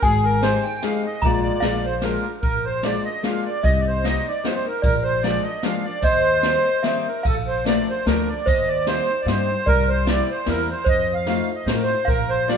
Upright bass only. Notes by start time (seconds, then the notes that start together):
0.03 G#1
1.23 A#1
1.62 A#1
2.43 A#1
3.64 C2
4.84 A#1
6.02 D#2
7.25 A#1
8.06 D2
8.47 D#2
9.26 G2
9.67 C2
10.47 E2
10.86 F2
11.66 A2
12.08 A#1